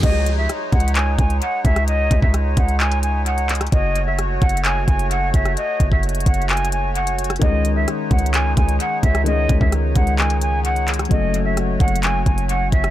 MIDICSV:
0, 0, Header, 1, 6, 480
1, 0, Start_track
1, 0, Tempo, 461538
1, 32, Time_signature, 4, 2, 24, 8
1, 13421, End_track
2, 0, Start_track
2, 0, Title_t, "Flute"
2, 0, Program_c, 0, 73
2, 32, Note_on_c, 0, 75, 102
2, 371, Note_off_c, 0, 75, 0
2, 392, Note_on_c, 0, 76, 78
2, 506, Note_off_c, 0, 76, 0
2, 753, Note_on_c, 0, 78, 88
2, 980, Note_off_c, 0, 78, 0
2, 992, Note_on_c, 0, 80, 87
2, 1220, Note_off_c, 0, 80, 0
2, 1232, Note_on_c, 0, 80, 80
2, 1459, Note_off_c, 0, 80, 0
2, 1473, Note_on_c, 0, 78, 88
2, 1700, Note_off_c, 0, 78, 0
2, 1711, Note_on_c, 0, 76, 91
2, 1939, Note_off_c, 0, 76, 0
2, 1952, Note_on_c, 0, 75, 118
2, 2290, Note_off_c, 0, 75, 0
2, 2313, Note_on_c, 0, 76, 68
2, 2426, Note_off_c, 0, 76, 0
2, 2671, Note_on_c, 0, 78, 85
2, 2899, Note_off_c, 0, 78, 0
2, 2912, Note_on_c, 0, 80, 93
2, 3139, Note_off_c, 0, 80, 0
2, 3151, Note_on_c, 0, 80, 86
2, 3379, Note_off_c, 0, 80, 0
2, 3392, Note_on_c, 0, 78, 87
2, 3619, Note_off_c, 0, 78, 0
2, 3873, Note_on_c, 0, 75, 103
2, 4211, Note_off_c, 0, 75, 0
2, 4232, Note_on_c, 0, 76, 73
2, 4346, Note_off_c, 0, 76, 0
2, 4591, Note_on_c, 0, 78, 98
2, 4819, Note_off_c, 0, 78, 0
2, 4832, Note_on_c, 0, 80, 101
2, 5060, Note_off_c, 0, 80, 0
2, 5072, Note_on_c, 0, 80, 76
2, 5299, Note_off_c, 0, 80, 0
2, 5313, Note_on_c, 0, 78, 86
2, 5540, Note_off_c, 0, 78, 0
2, 5552, Note_on_c, 0, 76, 87
2, 5779, Note_off_c, 0, 76, 0
2, 5793, Note_on_c, 0, 75, 119
2, 6131, Note_off_c, 0, 75, 0
2, 6153, Note_on_c, 0, 76, 73
2, 6266, Note_off_c, 0, 76, 0
2, 6512, Note_on_c, 0, 78, 81
2, 6739, Note_off_c, 0, 78, 0
2, 6753, Note_on_c, 0, 80, 96
2, 6980, Note_off_c, 0, 80, 0
2, 6994, Note_on_c, 0, 80, 84
2, 7220, Note_off_c, 0, 80, 0
2, 7233, Note_on_c, 0, 78, 82
2, 7460, Note_off_c, 0, 78, 0
2, 7712, Note_on_c, 0, 75, 96
2, 8051, Note_off_c, 0, 75, 0
2, 8072, Note_on_c, 0, 76, 78
2, 8186, Note_off_c, 0, 76, 0
2, 8433, Note_on_c, 0, 78, 88
2, 8660, Note_off_c, 0, 78, 0
2, 8673, Note_on_c, 0, 80, 92
2, 8900, Note_off_c, 0, 80, 0
2, 8913, Note_on_c, 0, 80, 80
2, 9140, Note_off_c, 0, 80, 0
2, 9154, Note_on_c, 0, 78, 91
2, 9380, Note_off_c, 0, 78, 0
2, 9392, Note_on_c, 0, 76, 92
2, 9619, Note_off_c, 0, 76, 0
2, 9633, Note_on_c, 0, 75, 117
2, 9971, Note_off_c, 0, 75, 0
2, 9993, Note_on_c, 0, 76, 69
2, 10106, Note_off_c, 0, 76, 0
2, 10352, Note_on_c, 0, 78, 84
2, 10579, Note_off_c, 0, 78, 0
2, 10592, Note_on_c, 0, 80, 92
2, 10819, Note_off_c, 0, 80, 0
2, 10832, Note_on_c, 0, 80, 84
2, 11059, Note_off_c, 0, 80, 0
2, 11072, Note_on_c, 0, 78, 87
2, 11300, Note_off_c, 0, 78, 0
2, 11553, Note_on_c, 0, 75, 110
2, 11891, Note_off_c, 0, 75, 0
2, 11911, Note_on_c, 0, 76, 73
2, 12025, Note_off_c, 0, 76, 0
2, 12270, Note_on_c, 0, 78, 96
2, 12499, Note_off_c, 0, 78, 0
2, 12511, Note_on_c, 0, 80, 103
2, 12739, Note_off_c, 0, 80, 0
2, 12751, Note_on_c, 0, 80, 75
2, 12979, Note_off_c, 0, 80, 0
2, 12992, Note_on_c, 0, 78, 88
2, 13219, Note_off_c, 0, 78, 0
2, 13232, Note_on_c, 0, 76, 88
2, 13421, Note_off_c, 0, 76, 0
2, 13421, End_track
3, 0, Start_track
3, 0, Title_t, "Accordion"
3, 0, Program_c, 1, 21
3, 33, Note_on_c, 1, 56, 86
3, 34, Note_on_c, 1, 63, 74
3, 34, Note_on_c, 1, 73, 92
3, 3834, Note_off_c, 1, 56, 0
3, 3835, Note_off_c, 1, 63, 0
3, 3835, Note_off_c, 1, 73, 0
3, 3873, Note_on_c, 1, 73, 92
3, 3874, Note_on_c, 1, 57, 85
3, 3874, Note_on_c, 1, 66, 76
3, 7675, Note_off_c, 1, 57, 0
3, 7675, Note_off_c, 1, 66, 0
3, 7712, Note_on_c, 1, 56, 83
3, 7712, Note_on_c, 1, 63, 73
3, 11514, Note_off_c, 1, 56, 0
3, 11514, Note_off_c, 1, 63, 0
3, 11553, Note_on_c, 1, 57, 82
3, 11554, Note_on_c, 1, 66, 77
3, 13421, Note_off_c, 1, 57, 0
3, 13421, Note_off_c, 1, 66, 0
3, 13421, Note_off_c, 1, 73, 0
3, 13421, End_track
4, 0, Start_track
4, 0, Title_t, "Grand piano"
4, 0, Program_c, 2, 0
4, 0, Control_c, 2, 64, 127
4, 44, Control_c, 2, 64, 0
4, 7689, Note_on_c, 2, 51, 66
4, 7705, Note_on_c, 2, 56, 62
4, 7720, Note_on_c, 2, 61, 60
4, 7736, Note_on_c, 2, 68, 76
4, 7881, Control_c, 2, 64, 127
4, 9582, Note_off_c, 2, 51, 0
4, 9590, Note_off_c, 2, 56, 0
4, 9598, Note_off_c, 2, 61, 0
4, 9606, Note_off_c, 2, 68, 0
4, 9608, Note_on_c, 2, 51, 69
4, 9624, Note_on_c, 2, 56, 67
4, 9639, Note_on_c, 2, 61, 62
4, 9655, Note_on_c, 2, 68, 78
4, 11502, Note_off_c, 2, 51, 0
4, 11510, Note_off_c, 2, 56, 0
4, 11518, Note_off_c, 2, 61, 0
4, 11526, Note_off_c, 2, 68, 0
4, 11531, Note_on_c, 2, 54, 74
4, 11547, Note_on_c, 2, 57, 69
4, 11563, Note_on_c, 2, 61, 67
4, 11566, Control_c, 2, 64, 0
4, 11578, Note_on_c, 2, 69, 75
4, 11725, Control_c, 2, 64, 127
4, 13421, Note_off_c, 2, 54, 0
4, 13421, Note_off_c, 2, 57, 0
4, 13421, Note_off_c, 2, 61, 0
4, 13421, Note_off_c, 2, 69, 0
4, 13421, End_track
5, 0, Start_track
5, 0, Title_t, "808-style bass"
5, 0, Program_c, 3, 38
5, 34, Note_on_c, 3, 37, 114
5, 494, Note_off_c, 3, 37, 0
5, 754, Note_on_c, 3, 37, 106
5, 1214, Note_off_c, 3, 37, 0
5, 1233, Note_on_c, 3, 37, 104
5, 1463, Note_off_c, 3, 37, 0
5, 1713, Note_on_c, 3, 37, 105
5, 2173, Note_off_c, 3, 37, 0
5, 2193, Note_on_c, 3, 37, 104
5, 2308, Note_off_c, 3, 37, 0
5, 2313, Note_on_c, 3, 37, 100
5, 2659, Note_off_c, 3, 37, 0
5, 2674, Note_on_c, 3, 37, 108
5, 3832, Note_off_c, 3, 37, 0
5, 3873, Note_on_c, 3, 30, 111
5, 4564, Note_off_c, 3, 30, 0
5, 4594, Note_on_c, 3, 30, 102
5, 5054, Note_off_c, 3, 30, 0
5, 5073, Note_on_c, 3, 30, 110
5, 5533, Note_off_c, 3, 30, 0
5, 5553, Note_on_c, 3, 30, 104
5, 5783, Note_off_c, 3, 30, 0
5, 6033, Note_on_c, 3, 30, 110
5, 6148, Note_off_c, 3, 30, 0
5, 6153, Note_on_c, 3, 30, 104
5, 6499, Note_off_c, 3, 30, 0
5, 6514, Note_on_c, 3, 30, 101
5, 7672, Note_off_c, 3, 30, 0
5, 7713, Note_on_c, 3, 37, 116
5, 8174, Note_off_c, 3, 37, 0
5, 8434, Note_on_c, 3, 37, 101
5, 8894, Note_off_c, 3, 37, 0
5, 8912, Note_on_c, 3, 37, 106
5, 9143, Note_off_c, 3, 37, 0
5, 9393, Note_on_c, 3, 37, 108
5, 9854, Note_off_c, 3, 37, 0
5, 9873, Note_on_c, 3, 37, 108
5, 9988, Note_off_c, 3, 37, 0
5, 9993, Note_on_c, 3, 37, 106
5, 10339, Note_off_c, 3, 37, 0
5, 10354, Note_on_c, 3, 37, 102
5, 11512, Note_off_c, 3, 37, 0
5, 11554, Note_on_c, 3, 30, 113
5, 12244, Note_off_c, 3, 30, 0
5, 12274, Note_on_c, 3, 30, 105
5, 12734, Note_off_c, 3, 30, 0
5, 12753, Note_on_c, 3, 30, 109
5, 13214, Note_off_c, 3, 30, 0
5, 13232, Note_on_c, 3, 30, 104
5, 13421, Note_off_c, 3, 30, 0
5, 13421, End_track
6, 0, Start_track
6, 0, Title_t, "Drums"
6, 33, Note_on_c, 9, 36, 121
6, 34, Note_on_c, 9, 42, 74
6, 34, Note_on_c, 9, 49, 109
6, 137, Note_off_c, 9, 36, 0
6, 138, Note_off_c, 9, 42, 0
6, 138, Note_off_c, 9, 49, 0
6, 274, Note_on_c, 9, 42, 80
6, 378, Note_off_c, 9, 42, 0
6, 514, Note_on_c, 9, 42, 83
6, 515, Note_on_c, 9, 37, 72
6, 618, Note_off_c, 9, 42, 0
6, 619, Note_off_c, 9, 37, 0
6, 753, Note_on_c, 9, 42, 46
6, 754, Note_on_c, 9, 36, 103
6, 834, Note_off_c, 9, 42, 0
6, 834, Note_on_c, 9, 42, 58
6, 858, Note_off_c, 9, 36, 0
6, 913, Note_off_c, 9, 42, 0
6, 913, Note_on_c, 9, 42, 76
6, 992, Note_off_c, 9, 42, 0
6, 992, Note_on_c, 9, 42, 69
6, 993, Note_on_c, 9, 39, 119
6, 1096, Note_off_c, 9, 42, 0
6, 1097, Note_off_c, 9, 39, 0
6, 1233, Note_on_c, 9, 36, 100
6, 1233, Note_on_c, 9, 42, 69
6, 1337, Note_off_c, 9, 36, 0
6, 1337, Note_off_c, 9, 42, 0
6, 1353, Note_on_c, 9, 42, 67
6, 1457, Note_off_c, 9, 42, 0
6, 1473, Note_on_c, 9, 42, 82
6, 1577, Note_off_c, 9, 42, 0
6, 1713, Note_on_c, 9, 36, 98
6, 1713, Note_on_c, 9, 42, 71
6, 1817, Note_off_c, 9, 36, 0
6, 1817, Note_off_c, 9, 42, 0
6, 1833, Note_on_c, 9, 37, 93
6, 1834, Note_on_c, 9, 42, 43
6, 1937, Note_off_c, 9, 37, 0
6, 1938, Note_off_c, 9, 42, 0
6, 1952, Note_on_c, 9, 42, 77
6, 2056, Note_off_c, 9, 42, 0
6, 2193, Note_on_c, 9, 36, 91
6, 2194, Note_on_c, 9, 42, 82
6, 2297, Note_off_c, 9, 36, 0
6, 2298, Note_off_c, 9, 42, 0
6, 2313, Note_on_c, 9, 36, 92
6, 2417, Note_off_c, 9, 36, 0
6, 2433, Note_on_c, 9, 37, 74
6, 2433, Note_on_c, 9, 42, 76
6, 2537, Note_off_c, 9, 37, 0
6, 2537, Note_off_c, 9, 42, 0
6, 2672, Note_on_c, 9, 42, 76
6, 2674, Note_on_c, 9, 36, 105
6, 2776, Note_off_c, 9, 42, 0
6, 2778, Note_off_c, 9, 36, 0
6, 2793, Note_on_c, 9, 42, 44
6, 2897, Note_off_c, 9, 42, 0
6, 2912, Note_on_c, 9, 42, 45
6, 2913, Note_on_c, 9, 39, 118
6, 3016, Note_off_c, 9, 42, 0
6, 3017, Note_off_c, 9, 39, 0
6, 3032, Note_on_c, 9, 42, 72
6, 3136, Note_off_c, 9, 42, 0
6, 3151, Note_on_c, 9, 42, 84
6, 3255, Note_off_c, 9, 42, 0
6, 3392, Note_on_c, 9, 42, 84
6, 3496, Note_off_c, 9, 42, 0
6, 3513, Note_on_c, 9, 42, 49
6, 3617, Note_off_c, 9, 42, 0
6, 3633, Note_on_c, 9, 39, 75
6, 3633, Note_on_c, 9, 42, 72
6, 3633, Note_on_c, 9, 46, 76
6, 3693, Note_off_c, 9, 42, 0
6, 3693, Note_on_c, 9, 42, 62
6, 3737, Note_off_c, 9, 39, 0
6, 3737, Note_off_c, 9, 46, 0
6, 3752, Note_on_c, 9, 37, 91
6, 3753, Note_off_c, 9, 42, 0
6, 3753, Note_on_c, 9, 42, 54
6, 3813, Note_off_c, 9, 42, 0
6, 3813, Note_on_c, 9, 42, 43
6, 3856, Note_off_c, 9, 37, 0
6, 3872, Note_off_c, 9, 42, 0
6, 3872, Note_on_c, 9, 42, 76
6, 3873, Note_on_c, 9, 36, 122
6, 3976, Note_off_c, 9, 42, 0
6, 3977, Note_off_c, 9, 36, 0
6, 4114, Note_on_c, 9, 42, 79
6, 4218, Note_off_c, 9, 42, 0
6, 4353, Note_on_c, 9, 42, 85
6, 4354, Note_on_c, 9, 37, 74
6, 4457, Note_off_c, 9, 42, 0
6, 4458, Note_off_c, 9, 37, 0
6, 4593, Note_on_c, 9, 42, 44
6, 4594, Note_on_c, 9, 36, 99
6, 4673, Note_off_c, 9, 42, 0
6, 4673, Note_on_c, 9, 42, 60
6, 4698, Note_off_c, 9, 36, 0
6, 4753, Note_off_c, 9, 42, 0
6, 4753, Note_on_c, 9, 42, 78
6, 4832, Note_off_c, 9, 42, 0
6, 4832, Note_on_c, 9, 42, 68
6, 4833, Note_on_c, 9, 39, 120
6, 4936, Note_off_c, 9, 42, 0
6, 4937, Note_off_c, 9, 39, 0
6, 5073, Note_on_c, 9, 36, 97
6, 5073, Note_on_c, 9, 42, 65
6, 5177, Note_off_c, 9, 36, 0
6, 5177, Note_off_c, 9, 42, 0
6, 5194, Note_on_c, 9, 42, 64
6, 5298, Note_off_c, 9, 42, 0
6, 5313, Note_on_c, 9, 42, 81
6, 5417, Note_off_c, 9, 42, 0
6, 5553, Note_on_c, 9, 36, 99
6, 5553, Note_on_c, 9, 42, 75
6, 5657, Note_off_c, 9, 36, 0
6, 5657, Note_off_c, 9, 42, 0
6, 5672, Note_on_c, 9, 37, 94
6, 5673, Note_on_c, 9, 42, 43
6, 5776, Note_off_c, 9, 37, 0
6, 5777, Note_off_c, 9, 42, 0
6, 5793, Note_on_c, 9, 42, 76
6, 5897, Note_off_c, 9, 42, 0
6, 6033, Note_on_c, 9, 36, 96
6, 6033, Note_on_c, 9, 42, 77
6, 6137, Note_off_c, 9, 36, 0
6, 6137, Note_off_c, 9, 42, 0
6, 6153, Note_on_c, 9, 36, 90
6, 6257, Note_off_c, 9, 36, 0
6, 6273, Note_on_c, 9, 42, 48
6, 6333, Note_off_c, 9, 42, 0
6, 6333, Note_on_c, 9, 42, 59
6, 6393, Note_off_c, 9, 42, 0
6, 6393, Note_on_c, 9, 42, 68
6, 6453, Note_off_c, 9, 42, 0
6, 6453, Note_on_c, 9, 42, 78
6, 6513, Note_off_c, 9, 42, 0
6, 6513, Note_on_c, 9, 42, 76
6, 6514, Note_on_c, 9, 36, 101
6, 6593, Note_off_c, 9, 42, 0
6, 6593, Note_on_c, 9, 42, 60
6, 6618, Note_off_c, 9, 36, 0
6, 6673, Note_off_c, 9, 42, 0
6, 6673, Note_on_c, 9, 42, 44
6, 6753, Note_off_c, 9, 42, 0
6, 6753, Note_on_c, 9, 39, 118
6, 6753, Note_on_c, 9, 42, 44
6, 6833, Note_off_c, 9, 42, 0
6, 6833, Note_on_c, 9, 42, 59
6, 6857, Note_off_c, 9, 39, 0
6, 6912, Note_off_c, 9, 42, 0
6, 6912, Note_on_c, 9, 42, 74
6, 6992, Note_off_c, 9, 42, 0
6, 6992, Note_on_c, 9, 42, 86
6, 7096, Note_off_c, 9, 42, 0
6, 7233, Note_on_c, 9, 42, 72
6, 7337, Note_off_c, 9, 42, 0
6, 7353, Note_on_c, 9, 42, 73
6, 7457, Note_off_c, 9, 42, 0
6, 7472, Note_on_c, 9, 46, 75
6, 7473, Note_on_c, 9, 42, 72
6, 7533, Note_off_c, 9, 42, 0
6, 7533, Note_on_c, 9, 42, 59
6, 7576, Note_off_c, 9, 46, 0
6, 7592, Note_on_c, 9, 37, 93
6, 7593, Note_off_c, 9, 42, 0
6, 7593, Note_on_c, 9, 42, 53
6, 7653, Note_off_c, 9, 42, 0
6, 7653, Note_on_c, 9, 42, 43
6, 7696, Note_off_c, 9, 37, 0
6, 7713, Note_off_c, 9, 42, 0
6, 7713, Note_on_c, 9, 36, 123
6, 7713, Note_on_c, 9, 42, 78
6, 7817, Note_off_c, 9, 36, 0
6, 7817, Note_off_c, 9, 42, 0
6, 7954, Note_on_c, 9, 42, 80
6, 8058, Note_off_c, 9, 42, 0
6, 8193, Note_on_c, 9, 42, 85
6, 8194, Note_on_c, 9, 37, 74
6, 8297, Note_off_c, 9, 42, 0
6, 8298, Note_off_c, 9, 37, 0
6, 8433, Note_on_c, 9, 42, 44
6, 8434, Note_on_c, 9, 36, 101
6, 8513, Note_off_c, 9, 42, 0
6, 8513, Note_on_c, 9, 42, 59
6, 8538, Note_off_c, 9, 36, 0
6, 8592, Note_off_c, 9, 42, 0
6, 8592, Note_on_c, 9, 42, 76
6, 8673, Note_off_c, 9, 42, 0
6, 8673, Note_on_c, 9, 42, 70
6, 8674, Note_on_c, 9, 39, 115
6, 8777, Note_off_c, 9, 42, 0
6, 8778, Note_off_c, 9, 39, 0
6, 8913, Note_on_c, 9, 36, 98
6, 8913, Note_on_c, 9, 42, 68
6, 9017, Note_off_c, 9, 36, 0
6, 9017, Note_off_c, 9, 42, 0
6, 9033, Note_on_c, 9, 42, 65
6, 9137, Note_off_c, 9, 42, 0
6, 9153, Note_on_c, 9, 42, 81
6, 9257, Note_off_c, 9, 42, 0
6, 9393, Note_on_c, 9, 36, 100
6, 9393, Note_on_c, 9, 42, 72
6, 9497, Note_off_c, 9, 36, 0
6, 9497, Note_off_c, 9, 42, 0
6, 9513, Note_on_c, 9, 37, 95
6, 9514, Note_on_c, 9, 42, 44
6, 9617, Note_off_c, 9, 37, 0
6, 9618, Note_off_c, 9, 42, 0
6, 9633, Note_on_c, 9, 42, 78
6, 9737, Note_off_c, 9, 42, 0
6, 9873, Note_on_c, 9, 36, 98
6, 9874, Note_on_c, 9, 42, 79
6, 9977, Note_off_c, 9, 36, 0
6, 9978, Note_off_c, 9, 42, 0
6, 9993, Note_on_c, 9, 36, 89
6, 10097, Note_off_c, 9, 36, 0
6, 10113, Note_on_c, 9, 37, 76
6, 10113, Note_on_c, 9, 42, 77
6, 10217, Note_off_c, 9, 37, 0
6, 10217, Note_off_c, 9, 42, 0
6, 10353, Note_on_c, 9, 42, 74
6, 10354, Note_on_c, 9, 36, 102
6, 10457, Note_off_c, 9, 42, 0
6, 10458, Note_off_c, 9, 36, 0
6, 10473, Note_on_c, 9, 42, 46
6, 10577, Note_off_c, 9, 42, 0
6, 10593, Note_on_c, 9, 39, 118
6, 10593, Note_on_c, 9, 42, 44
6, 10697, Note_off_c, 9, 39, 0
6, 10697, Note_off_c, 9, 42, 0
6, 10713, Note_on_c, 9, 42, 72
6, 10817, Note_off_c, 9, 42, 0
6, 10832, Note_on_c, 9, 42, 85
6, 10936, Note_off_c, 9, 42, 0
6, 11073, Note_on_c, 9, 42, 85
6, 11177, Note_off_c, 9, 42, 0
6, 11194, Note_on_c, 9, 42, 50
6, 11298, Note_off_c, 9, 42, 0
6, 11313, Note_on_c, 9, 46, 73
6, 11314, Note_on_c, 9, 39, 75
6, 11314, Note_on_c, 9, 42, 73
6, 11374, Note_off_c, 9, 42, 0
6, 11374, Note_on_c, 9, 42, 62
6, 11417, Note_off_c, 9, 46, 0
6, 11418, Note_off_c, 9, 39, 0
6, 11433, Note_on_c, 9, 37, 95
6, 11434, Note_off_c, 9, 42, 0
6, 11434, Note_on_c, 9, 42, 53
6, 11494, Note_off_c, 9, 42, 0
6, 11494, Note_on_c, 9, 42, 43
6, 11537, Note_off_c, 9, 37, 0
6, 11553, Note_off_c, 9, 42, 0
6, 11553, Note_on_c, 9, 36, 122
6, 11553, Note_on_c, 9, 42, 77
6, 11657, Note_off_c, 9, 36, 0
6, 11657, Note_off_c, 9, 42, 0
6, 11794, Note_on_c, 9, 42, 81
6, 11898, Note_off_c, 9, 42, 0
6, 12034, Note_on_c, 9, 42, 87
6, 12035, Note_on_c, 9, 37, 74
6, 12138, Note_off_c, 9, 42, 0
6, 12139, Note_off_c, 9, 37, 0
6, 12273, Note_on_c, 9, 42, 46
6, 12274, Note_on_c, 9, 36, 105
6, 12354, Note_off_c, 9, 42, 0
6, 12354, Note_on_c, 9, 42, 59
6, 12378, Note_off_c, 9, 36, 0
6, 12434, Note_off_c, 9, 42, 0
6, 12434, Note_on_c, 9, 42, 78
6, 12513, Note_off_c, 9, 42, 0
6, 12513, Note_on_c, 9, 42, 70
6, 12514, Note_on_c, 9, 39, 115
6, 12617, Note_off_c, 9, 42, 0
6, 12618, Note_off_c, 9, 39, 0
6, 12753, Note_on_c, 9, 36, 99
6, 12753, Note_on_c, 9, 42, 65
6, 12857, Note_off_c, 9, 36, 0
6, 12857, Note_off_c, 9, 42, 0
6, 12873, Note_on_c, 9, 42, 66
6, 12977, Note_off_c, 9, 42, 0
6, 12993, Note_on_c, 9, 42, 82
6, 13097, Note_off_c, 9, 42, 0
6, 13232, Note_on_c, 9, 36, 100
6, 13233, Note_on_c, 9, 42, 73
6, 13336, Note_off_c, 9, 36, 0
6, 13337, Note_off_c, 9, 42, 0
6, 13352, Note_on_c, 9, 37, 98
6, 13353, Note_on_c, 9, 42, 43
6, 13421, Note_off_c, 9, 37, 0
6, 13421, Note_off_c, 9, 42, 0
6, 13421, End_track
0, 0, End_of_file